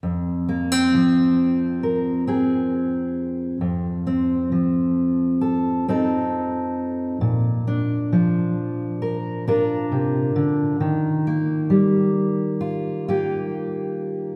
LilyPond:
\new Staff \with { instrumentName = "Steel-string acoustic guitar" } { \time 4/4 \key bes \mixolydian \tempo 4 = 67 << { r8 bes16 c'4~ c'16 bes'8 <c' aes'>4. | r8 c'4. a'8 <c' ees' a'>4. | r8 d'4. bes'8 <d' f' bes'>4. | r8 bes4. f'8 <bes f' g'>4. | } \\ { f,4 f2. | f,4 f2. | bes,4 f2 c8 d8 | ees4 g2. | } >> }